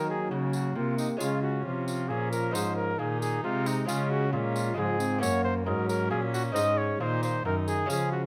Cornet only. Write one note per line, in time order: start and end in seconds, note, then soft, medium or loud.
0.10 0.30 G#4 medium
0.31 0.53 F#4 medium
0.54 0.78 F#4 medium
0.76 0.97 F4 medium
0.98 1.08 D#4 medium
1.20 1.42 F4 medium
1.42 1.66 F#4 medium
1.64 1.86 F4 medium
1.87 2.10 F4 medium
2.09 2.31 G#4 medium
2.32 2.55 A#4 medium
2.54 2.75 C5 medium
2.76 3.00 A#4 medium
2.99 3.20 G#4 medium
3.21 3.43 G#4 medium
3.44 3.68 F4 medium
3.67 3.87 D#4 medium
3.87 4.12 F4 medium
4.10 4.32 F#4 medium
4.33 4.54 F4 medium
4.55 4.77 F4 medium
4.78 5.21 G#4 medium
5.21 5.43 C#5 medium
5.44 5.54 C5 medium
5.65 5.88 A#4 medium
5.89 6.10 A#4 medium
6.10 6.20 G#4 medium
6.33 6.43 F#4 medium
6.55 6.79 D#5 loud
6.78 7.00 C#5 medium
7.01 7.22 C5 medium
7.23 7.45 C5 medium
7.45 7.55 A#4 medium
7.67 7.89 G#4 medium
7.91 8.12 G#4 medium
8.12 8.22 F#4 medium